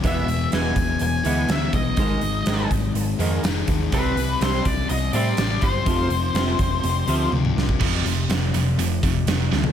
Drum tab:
CC |----------------|----------------|----------------|----------------|
HH |x-x-x-x-x-x-x-x-|x-x-x-x-x-x-x-x-|x-x-x-x-x-x-x-x-|x-x-x-x-x-x-----|
SD |----o-------o---|----o-------o-o-|----o-------o---|----o---------o-|
T1 |----------------|----------------|----------------|------------o---|
T2 |----------------|----------------|----------------|-------------o--|
FT |----------------|----------------|----------------|----------------|
BD |o-----o-------o-|o-----o-------o-|o-----o-------o-|o-----o--------o|

CC |x---------------|
HH |--x-x-x-x-x-x---|
SD |----o-------o-o-|
T1 |----------------|
T2 |----------------|
FT |---------------o|
BD |o---------o-----|